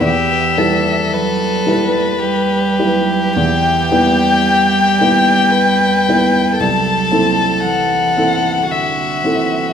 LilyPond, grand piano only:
\new Staff \with { instrumentName = "Grand piano" } { \time 3/4 \key e \minor \tempo 4 = 56 e,8 <g e' b'>4 <g e' b'>4 <g e' b'>8 | e,8 <b e' b'>4 <b e' b'>4 <b e' b'>8 | c,8 <c' e' a'>4 <c' e' a'>4 <c' e' a'>8 | }